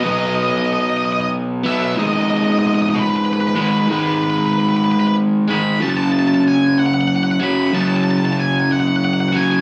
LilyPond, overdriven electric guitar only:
\new Staff \with { instrumentName = "Overdriven electric guitar" } { \clef bass \time 6/8 \key gis \phrygian \tempo 4. = 62 <b, fis b>2~ <b, fis b>8 <b, fis b>8 | <gis, dis gis>2~ <gis, dis gis>8 <gis, dis gis>8 | <gis, dis gis>2~ <gis, dis gis>8 <gis, dis gis>8 | <fis, cis fis>2~ <fis, cis fis>8 <fis, cis fis>8 |
<fis, cis fis>2~ <fis, cis fis>8 <fis, cis fis>8 | }